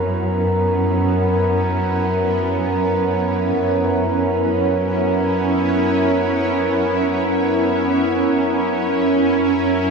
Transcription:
Already playing: cello section F#2, ambient pad B3 C#4 E4, glass harmonica A#4 A#5
8.33 cello section F#2, ambient pad F#3

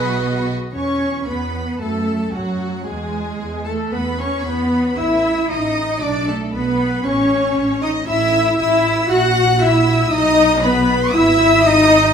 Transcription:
Already playing: double bass section B1, french horn section B3, cello section B3, violin section F#4 D#5 B6, viola section G#4, trumpet section B4, flute section B5
0.72 double bass section E2, french horn section C#4, cello section C#4, viola section C#4, violin section C#5 C#6, flute section C#5
1.26 double bass section E2, cello section B3, french horn section B3, viola section B3, flute section B4, violin section B4 B5
1.79 double bass section F#2, french horn section A3, cello section A3, viola section A3, violin section A4 A5, flute section A4
2.32 double bass section F#2, cello section F#3, viola section F#3, french horn section F#3, flute section F#4, violin section F#4 F#5
2.84 double bass section E2, french horn section G#3, cello section G#3, viola section G#3, violin section G#4 G#5, flute section G#4
3.39 double bass section E2
3.64 french horn section A3, cello section A3, viola section A3, flute section A4, violin section A4 A5
3.92 double bass section E2, french horn section B3, cello section B3, viola section B3, flute section B4, violin section B4 B5
4.18 cello section C#4, french horn section C#4, viola section C#4, violin section C#5 C#6, flute section C#5
4.43 double bass section E2, french horn section B3, cello section B3, viola section B3, violin section B4 B5, flute section B4
4.96 double bass section A1, viola section E4, french horn section E4, cello section E4, flute section E5, violin section E5 E6
5.48 double bass section A1, french horn section D#4, cello section D#4, viola section D#4, flute section D#5, violin section D#5 D#6
6.01 double bass section B1, french horn section D4, viola section D4, cello section D4, violin section D5 D6, flute section D5
6.27 viola section A3, cello section A3, french horn section A3, violin section A4 A5, flute section A4
6.53 double bass section B1, cello section B3, viola section B3, french horn section B3, flute section B4, violin section B4 B5
7.03 double bass section A1, french horn section C#4, cello section C#4, viola section C#4, flute section C#5, violin section C#5 C#6
7.56 double bass section A1
7.81 french horn section D#4, cello section D#4, viola section D#4, violin section D#5 D#6, flute section D#5
8.06 double bass section A1, french horn section E4, viola section E4, cello section E4, violin section E5 E6, flute section E5
8.57 double bass section A1, french horn section E4, cello section E4, viola section E4, flute section E5, violin section E5 E6
9.08 double bass section A#1, french horn section F#4, viola section F#4, cello section F#4, violin section F#5 F#6, flute section F#5
9.60 cello section E4, french horn section E4, viola section E4, violin section E5 E6, flute section E5
10.09 double bass section B1, french horn section D#4, cello section D#4, viola section D#4, flute section D#5, violin section D#5 D#6
10.61 french horn section B3, cello section B3, viola section B3, violin section B4 B5, flute section B4
11.13 double bass section G#1, viola section E4, cello section E4, french horn section E4, flute section E5, violin section E5 E6
11.65 french horn section D#4, cello section D#4, viola section D#4, flute section D#5, violin section D#5 D#6

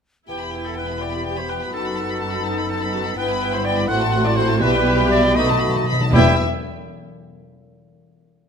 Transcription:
0.28 double bass section E1, cello section E2, french horn section B3 E4, bassoon B3, viola section E4, clarinet E4, trumpet G4, violin section G4 B4 G5, oboe G4, flute B5
0.41 violin section E4 G4 B5
0.53 violin section G4 B4 G5
0.65 violin section E4 G4 B5, oboe A4, trumpet A4
0.77 violin section G4 B4 G5, trumpet B4, oboe B4
0.89 violin section E4 G4 B5
1.01 viola section G4, violin section G4 B4 G5, trumpet D5, oboe D5
1.13 violin section E4 G4 B5
1.26 violin section G4 B4 G5
1.38 violin section E4 G4 B5, trumpet C5, oboe C5
1.49 violin section G4 B4 G5, trumpet B4, oboe B4
1.62 violin section E4 G4 B5
1.73 double bass section F#1, cello section F#2, clarinet D#4, french horn section D#4, viola section F#4, violin section F#4 B4 A5, trumpet A4, oboe A4
1.86 violin section D#4 A4 B5
1.98 violin section F#4 B4 A5
2.10 violin section D#4 A4 B5
2.21 violin section F#4 B4 A5
2.34 violin section D#4 A4 B5
2.46 viola section D#4, violin section F#4 B4 A5
2.58 violin section D#4 A4 B5
2.69 viola section D#4, violin section F#4 B4 A5
2.83 violin section D#4 A4 B5
2.93 viola section F#4, violin section F#4 B4 A5
3.05 violin section D#4 A4 B5
3.17 double bass section G1, cello section G2, bassoon B3, french horn section B3 E4, clarinet E4, viola section E4, violin section G4 B4 G5, trumpet B4, oboe B4, flute B5
3.30 violin section E4 G4 B5
3.42 violin section G4 B4 G5
3.53 violin section E4 G4 B5, oboe C5, trumpet C5
3.64 violin section G4 B4 G5, oboe D5, trumpet D5
3.77 violin section E4 G4 B5
3.87 double bass section A1, cello section A2, bassoon A3, french horn section C4, viola section F#4, violin section F#4 C5 F#5, oboe F#5, trumpet F#5, flute C6
4.02 violin section E4 A4 A5
4.13 violin section F#4 C5 F#5
4.24 violin section E4 A4 A5, oboe D5, trumpet D5
4.36 violin section F#4 C5 F#5, oboe C5, trumpet C5
4.49 violin section E4 A4 A5
4.61 double bass section B1, cello section B2, timpani B2, bassoon G3, french horn section G3, viola section G4, violin section G4 B4 E5, trumpet B4, oboe B4, flute B5
4.73 violin section E4 G4 G5
4.85 violin section G4 B4 E5
4.99 violin section E4 G4 G5
5.10 violin section G4 B4 E5, trumpet D5, oboe D5
5.23 violin section E4 G4 G5
5.35 timpani B2, french horn section A3 F#4, bassoon A3, viola section D#4, violin section D#4 B4 B5, clarinet F#4, trumpet D#5, oboe D#5
5.43 timpani B2
5.48 timpani B2, violin section F#4 A4 A5
5.59 timpani B2, violin section D#4 B4 B5
5.67 timpani B2
5.74 timpani B2, violin section F#4 A4 A5
5.84 timpani B2, violin section D#4 B4
5.89 timpani B2, violin section B5
6.00 timpani B2, violin section F#4 A4 A5
6.13 double bass section E1, cello section E2, timpani E2, bassoon G3, french horn section B3 E4, viola section E4, clarinet G4, violin section B4 E5, oboe E5, trumpet G5, flute B5

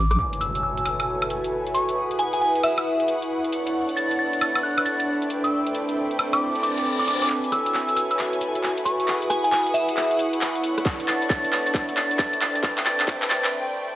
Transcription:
Already playing: wobble bass A1
0.11 synth bell D6, cross-stick, closed hi-hat, shaker
0.19 violin section E4 A4 B4 C#5 G#5, analog synth pad F#4, synth bell D6, impact
0.33 closed hi-hat
0.41 synth bell E6, open hi-hat
0.49 analog synth pad B4
0.55 analog synth pad A4, closed hi-hat
0.63 synth bell E6
0.77 closed hi-hat
0.85 synth bell E6, open hi-hat, high woodblock
0.97 analog synth pad G#5, synth bell E6, closed hi-hat, high woodblock
1.02 analog synth pad E5
1.22 closed hi-hat, high woodblock
1.30 open hi-hat
1.44 closed hi-hat
1.67 closed hi-hat
1.74 synth bell C#6, open hi-hat
1.89 closed hi-hat
1.97 analog synth pad E4, violin section G#4 F#5 D#6
2.11 closed hi-hat
2.16 analog synth pad F#5, synth bell G#5, open hi-hat
2.33 synth bell G#5, closed hi-hat
2.42 synth bell G#5
2.55 analog synth pad C#6, closed hi-hat
2.63 synth bell E5, analog synth pad D#6, open hi-hat, high woodblock
2.78 closed hi-hat, high woodblock
3.00 closed hi-hat
3.08 open hi-hat
3.22 closed hi-hat
3.44 closed hi-hat
3.52 violin section B3 A4 C#5 D5, analog synth pad D4, open hi-hat
3.67 closed hi-hat
3.75 analog synth pad A4
3.89 closed hi-hat
3.97 synth bell A6, open hi-hat
4.11 closed hi-hat
4.19 synth bell A6
4.33 analog synth pad E5 B5, closed hi-hat
4.41 synth bell A6, open hi-hat, high woodblock
4.55 synth bell A6, closed hi-hat, high woodblock
4.63 synth bell F#6
4.77 synth bell F#6, closed hi-hat, high woodblock
4.85 synth bell A6, open hi-hat
5.00 synth bell A6, closed hi-hat
5.22 closed hi-hat
5.30 violin section A3 E4 B4 C5 G5, open hi-hat
5.44 synth bell E6, closed hi-hat
5.66 analog synth pad C4, closed hi-hat
5.75 open hi-hat
5.89 closed hi-hat
6.11 closed hi-hat
6.19 analog synth pad G5, open hi-hat, high woodblock
6.33 synth bell D6, closed hi-hat, high woodblock
6.41 reverse cymbal
6.55 closed hi-hat
6.63 synth bell D6, open hi-hat
6.78 closed hi-hat
6.99 synth bell D6, closed hi-hat
7.08 synth bell D6, open hi-hat
7.22 synth bell D6, closed hi-hat
7.30 violin section E4 A4 B4 C#5 G#5, analog synth pad F#4, clap, shaker
7.44 analog synth pad E5, closed hi-hat, shaker
7.52 synth bell E6, cross-stick, open hi-hat, shaker
7.66 closed hi-hat, shaker
7.74 synth bell E6, clap, shaker
7.89 closed hi-hat, shaker
7.96 synth bell E6, open hi-hat, shaker
8.11 analog synth pad G#5, synth bell E6, closed hi-hat, shaker
8.19 clap, shaker
8.33 closed hi-hat, shaker
8.41 open hi-hat, shaker
8.55 closed hi-hat, shaker
8.63 clap, shaker
8.78 closed hi-hat
8.85 synth bell C#6, cross-stick, open hi-hat, shaker
9.00 closed hi-hat, shaker
9.08 analog synth pad E4, violin section G#4 F#5 D#6, clap, shaker
9.22 closed hi-hat, shaker
9.30 synth bell G#5, cross-stick, open hi-hat, shaker
9.44 synth bell G#5, analog synth pad D#6, closed hi-hat, shaker
9.49 synth bell G#5, analog synth pad C#6, clap, shaker
9.67 closed hi-hat, shaker
9.74 synth bell E5, open hi-hat, shaker
9.79 analog synth pad F#5
9.89 closed hi-hat, shaker
9.97 clap, shaker
10.11 closed hi-hat, shaker
10.19 open hi-hat, shaker
10.33 closed hi-hat, shaker
10.41 clap, shaker
10.55 closed hi-hat
10.63 violin section B3 A4 C#5 D5, analog synth pad D4, open hi-hat, shaker
10.78 cross-stick, closed hi-hat, shaker
10.86 kick, clap, shaker
10.99 analog synth pad A4, closed hi-hat, shaker
11.08 synth bell A6, clap, open hi-hat, shaker
11.22 closed hi-hat, shaker
11.30 synth bell A6, kick, clap, shaker
11.45 analog synth pad E5, closed hi-hat, shaker
11.52 synth bell A6, clap, open hi-hat, shaker
11.66 synth bell A6, closed hi-hat, shaker
11.74 kick, clap, shaker
11.89 closed hi-hat, shaker
11.96 synth bell A6, clap, open hi-hat, shaker
12.11 closed hi-hat, shaker
12.19 synth bell A6, kick, clap, shaker
12.33 closed hi-hat
12.41 violin section A3 B4 C5 G5, synth bell A6, clap, open hi-hat, shaker
12.55 synth bell A6, closed hi-hat, shaker
12.63 kick, clap, shaker
12.68 analog synth pad C4
12.78 clap, closed hi-hat, shaker
12.86 synth bell A6, clap, open hi-hat, shaker
13.00 clap, closed hi-hat, shaker
13.08 kick, clap, shaker
13.22 clap, closed hi-hat, shaker
13.30 synth bell A6, clap, open hi-hat, shaker
13.44 clap, closed hi-hat, shaker

